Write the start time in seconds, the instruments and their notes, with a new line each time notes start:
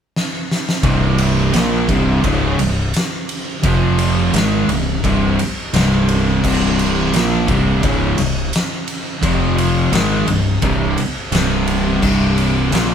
0.16 snare
0.51 snare
0.69 snare
0.83 fingered electric bass C1, distorted electric guitar C2 G2 C3, kick, ride
1.18 ride
1.53 fingered electric bass A#1, distorted electric guitar A#2 F3 A#3, snare, ride
1.88 fingered electric bass C1, distorted electric guitar C2 G2 C3, kick, ride
2.23 fingered electric bass C#1, distorted electric guitar C#2 G#2 C#3, kick, ride
2.59 fingered electric bass C1, distorted electric guitar C2 G2, ride
2.94 snare, ride
3.29 ride
3.63 fingered electric bass F1, distorted electric guitar F2 C3 F3, kick, ride
3.99 ride
4.33 fingered electric bass G#1, distorted electric guitar G#2 D#3 G#3, snare, ride
4.68 fingered electric bass C1, distorted electric guitar C2 G2, ride
5.04 fingered electric bass C1, distorted electric guitar C2 G2 C3, kick, ride
5.39 ride
5.74 fingered electric bass C1, distorted electric guitar C2 G2 C3, snare, ride
6.09 ride
6.44 fingered electric bass C1, distorted electric guitar C2 G2 C3, kick, crash
6.79 ride
7.13 fingered electric bass A#1, distorted electric guitar A#2 F3 A#3, snare, ride
7.48 fingered electric bass C1, distorted electric guitar C2 G2 C3, kick, ride
7.83 fingered electric bass C#1, distorted electric guitar C#2 G#2 C#3, kick, ride
8.18 fingered electric bass C1, distorted electric guitar C2 G2, ride
8.53 snare, ride
8.88 ride
9.22 fingered electric bass F1, distorted electric guitar F2 C3 F3, kick, ride
9.58 ride
9.92 fingered electric bass G#1, distorted electric guitar G#2 D#3 G#3, snare, ride
10.28 fingered electric bass C1, distorted electric guitar C2 G2, ride
10.62 fingered electric bass C1, distorted electric guitar C2 G2 C3, kick, ride
10.98 ride
11.32 fingered electric bass C1, distorted electric guitar C2 G2 C3, snare, ride
11.68 ride
12.02 fingered electric bass C1, distorted electric guitar C2 G2 C3, kick, crash
12.38 ride
12.71 fingered electric bass A#1, distorted electric guitar A#2 F3 A#3, snare, ride